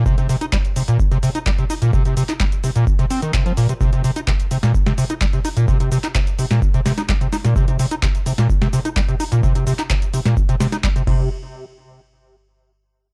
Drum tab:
CC |----------------|----------------|----------------|----------------|
HH |-xox-xox-xox-xox|-xox-xox-xox-xox|-xox-xox-xox-xox|-xox-xox-xox-xox|
SH |xxxxxxxxxxxxxxxx|xxxxxxxxxxxxxxxx|xxxxxxxxxxxxxxxx|xxxxxxxxxxxxxxxx|
CP |----x-------x---|---xx-------x---|----x-------x---|---xx-------x---|
SD |----------------|----------------|-------o-o------|-------o--oo--oo|
BD |o---o---o---o---|o---o---o---o---|o---o---o---o---|o---o---o---o---|

CC |----------------|--------------x-|----------------|
HH |-xox-xox-xox-xox|-xox-xox-xox-x--|----------------|
SH |xxxxxxxxxxxxxxxx|xxxxxxxxxxxxxx--|----------------|
CP |----x-------x---|---xx-------x---|----------------|
SD |-------o-o------|-------o--oo----|----------------|
BD |o---o---o---o---|o---o---o---o-o-|----------------|